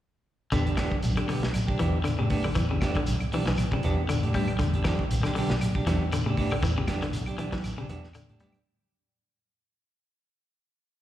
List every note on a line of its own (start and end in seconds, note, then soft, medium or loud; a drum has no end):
0.52 0.77 E2 medium
0.52 0.67 D3 medium
0.52 0.67 B3 medium
0.52 0.66 D4 medium
0.52 0.65 G4 medium
0.52 kick medium
0.52 closed hi-hat medium
0.52 shekere medium
0.66 0.77 D4 soft
0.66 0.78 G4 soft
0.66 closed hi-hat soft
0.77 0.95 B3 soft
0.77 0.95 D4 medium
0.77 0.95 G4 medium
0.77 muted clean electric guitar stroke medium
0.77 kick medium
0.77 snare medium
0.77 closed hi-hat soft
0.77 high conga medium
0.77 claves medium
0.77 shekere soft
0.92 kick medium
1.02 1.28 B1 medium
1.02 closed hi-hat medium
1.02 high conga medium
1.02 shekere medium
1.17 1.24 D3 medium
1.17 1.29 D4 soft
1.17 1.28 G4 medium
1.17 closed hi-hat soft
1.17 claves medium
1.28 1.44 D3 medium
1.28 1.45 B3 medium
1.28 1.46 G4 medium
1.28 open hi-hat soft
1.28 high conga medium
1.28 shekere soft
1.42 1.67 B1 medium
1.42 snare medium
1.42 closed hi-hat soft
1.42 high conga medium
1.54 closed hi-hat medium
1.54 claves medium
1.54 shekere medium
1.67 1.79 D4 soft
1.67 1.80 G4 medium
1.67 kick medium
1.79 2.17 E2 medium
1.79 1.94 E3 medium
1.79 1.97 B3 medium
1.79 1.97 D4 medium
1.79 1.97 G4 medium
1.79 closed hi-hat soft
1.79 high conga medium
1.79 shekere soft
2.04 2.13 D3 medium
2.04 closed hi-hat soft
2.04 claves medium
2.04 shekere medium
2.19 2.44 A2 medium
2.19 2.34 C#3 medium
2.19 2.30 D4 soft
2.19 2.30 G4 medium
2.30 2.47 B3 medium
2.30 2.48 D4 medium
2.30 2.48 G4 medium
2.30 kick medium
2.30 open hi-hat medium
2.30 shekere soft
2.44 2.51 D3 medium
2.44 high conga medium
2.44 claves medium
2.55 2.80 E2 medium
2.55 2.64 E3 medium
2.55 kick medium
2.55 closed hi-hat medium
2.55 shekere medium
2.70 2.85 C#3 medium
2.70 2.82 D4 soft
2.70 2.82 G4 soft
2.81 2.98 B3 medium
2.81 2.99 D4 medium
2.81 2.99 G4 medium
2.81 kick medium
2.81 snare medium
2.81 closed hi-hat soft
2.81 high conga medium
2.81 claves medium
2.81 shekere soft
2.95 3.11 D3 medium
2.95 kick medium
2.95 closed hi-hat soft
3.07 3.31 B1 medium
3.07 closed hi-hat medium
3.07 high conga medium
3.07 shekere medium
3.20 muted clean electric guitar stroke soft
3.20 closed hi-hat soft
3.20 claves medium
3.32 3.42 E3 medium
3.32 3.49 B3 medium
3.32 3.50 D4 medium
3.32 3.50 G4 medium
3.32 open hi-hat medium
3.32 high conga medium
3.32 shekere soft
3.46 3.71 B1 medium
3.46 3.62 E3 medium
3.46 snare medium
3.46 closed hi-hat soft
3.46 high conga medium
3.57 closed hi-hat medium
3.57 claves medium
3.57 shekere medium
3.72 3.88 C#3 medium
3.72 3.83 D4 soft
3.72 3.84 G4 medium
3.72 kick medium
3.83 4.20 E2 medium
3.83 4.00 B3 medium
3.83 4.01 D4 medium
3.83 4.01 G4 medium
3.83 closed hi-hat soft
3.83 high conga medium
3.83 shekere soft
4.09 4.24 D3 medium
4.09 closed hi-hat medium
4.09 claves medium
4.09 shekere medium
4.23 4.47 A2 loud
4.23 4.34 D4 soft
4.23 4.35 G4 soft
4.23 closed hi-hat soft
4.34 4.49 G3 medium
4.34 4.51 B3 medium
4.34 4.51 D4 medium
4.34 4.52 G4 medium
4.34 kick medium
4.34 open hi-hat medium
4.34 high conga medium
4.34 shekere soft
4.48 closed hi-hat soft
4.48 claves medium
4.59 4.84 E2 medium
4.59 4.74 D3 medium
4.59 kick medium
4.59 closed hi-hat medium
4.59 shekere medium
4.74 4.85 D4 soft
4.74 4.86 G4 medium
4.74 closed hi-hat soft
4.84 4.99 E3 medium
4.84 5.02 D4 medium
4.84 5.03 G4 medium
4.84 muted clean electric guitar stroke medium
4.84 kick medium
4.84 snare medium
4.84 closed hi-hat soft
4.84 high conga medium
4.84 claves medium
4.84 shekere soft
4.99 kick medium
5.11 5.35 B1 medium
5.11 closed hi-hat medium
5.11 shekere medium
5.23 5.30 D3 medium
5.23 5.37 D4 soft
5.23 5.37 G4 medium
5.23 snare soft
5.23 closed hi-hat soft
5.23 claves medium
5.35 5.50 D3 medium
5.35 5.53 B3 medium
5.35 5.53 D4 medium
5.35 5.54 G4 medium
5.35 open hi-hat medium
5.35 high conga medium
5.35 shekere soft
5.50 5.74 B1 medium
5.50 snare medium
5.50 closed hi-hat soft
5.50 high conga medium
5.61 closed hi-hat medium
5.61 claves medium
5.61 shekere medium
5.75 5.86 D4 soft
5.75 5.86 G4 medium
5.75 kick medium
5.85 6.23 E2 medium
5.85 6.01 E3 medium
5.85 6.03 B3 medium
5.85 6.04 D4 medium
5.85 6.04 G4 medium
5.85 snare soft
5.85 closed hi-hat medium
5.85 high conga medium
5.85 shekere soft
6.12 6.21 D3 medium
6.12 closed hi-hat medium
6.12 claves medium
6.12 shekere medium
6.25 6.49 A2 medium
6.25 6.41 C#3 medium
6.25 6.37 D4 soft
6.25 6.37 G4 medium
6.37 6.54 B3 medium
6.37 6.54 D4 medium
6.37 6.54 G4 medium
6.37 kick medium
6.37 open hi-hat medium
6.37 shekere soft
6.51 6.59 D3 medium
6.51 claves medium
6.63 6.87 E2 medium
6.63 6.71 E3 medium
6.63 kick medium
6.63 closed hi-hat medium
6.63 shekere medium
6.76 6.92 C#3 medium
6.76 6.88 G4 medium
6.87 7.04 B3 medium
6.87 7.05 D4 medium
6.87 7.05 G4 medium
6.87 kick medium
6.87 snare medium
6.87 closed hi-hat medium
6.87 high conga medium
6.87 claves medium
6.87 shekere soft
7.02 7.17 D3 medium
7.02 snare soft
7.02 closed hi-hat soft
7.13 7.37 B1 medium
7.13 closed hi-hat medium
7.13 high conga medium
7.13 shekere medium
7.26 7.38 D4 soft
7.26 7.38 G4 medium
7.26 closed hi-hat soft
7.26 claves medium
7.38 7.47 E3 medium
7.38 7.55 B3 medium
7.38 7.55 D4 medium
7.38 7.56 G4 medium
7.38 closed hi-hat soft
7.38 high conga medium
7.38 shekere soft
7.52 7.77 B1 medium
7.52 7.68 E3 medium
7.52 kick medium
7.52 snare medium
7.52 closed hi-hat soft
7.52 high conga medium
7.64 closed hi-hat medium
7.64 claves medium
7.64 shekere medium
7.78 7.93 C#3 medium
7.78 7.89 D4 soft
7.78 7.89 G4 medium
7.89 8.26 E2 medium
7.89 8.06 B3 medium
7.89 8.06 D4 medium
7.89 8.07 G4 medium
7.89 closed hi-hat soft
7.89 high conga medium
7.89 shekere soft
8.04 snare soft
8.14 8.30 D3 medium
8.14 closed hi-hat medium
8.14 claves medium
8.14 shekere medium
8.29 8.53 A2 medium
8.29 8.41 D4 soft
8.29 8.41 G4 medium
8.29 closed hi-hat soft
8.40 8.55 G3 medium
8.40 8.57 B3 medium
8.40 8.58 D4 medium
8.40 8.58 G4 medium
8.40 closed hi-hat soft
8.40 high conga medium
8.40 shekere soft
8.53 closed hi-hat soft
8.53 claves medium